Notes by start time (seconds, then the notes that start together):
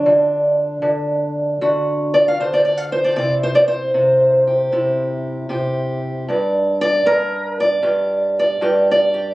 Already playing: D4
0.06 D3
0.82 D3
1.61 D3 F#4
2.14 D5
2.28 F5
2.40 D3 C5
2.53 D5
2.65 D5
2.78 F5
2.92 C5
3.04 D5
3.16 C3 C4 E4 D5
3.43 C5
3.55 D5
3.68 C5
3.94 C3
4.47 G4
4.72 C3 E4
5.49 C3 G4
6.28 G2 D5
6.81 D5
7.06 G2 A#4
7.60 D5
7.83 G2 G4
8.39 D5
8.61 G2 G4
8.91 D5
9.14 G4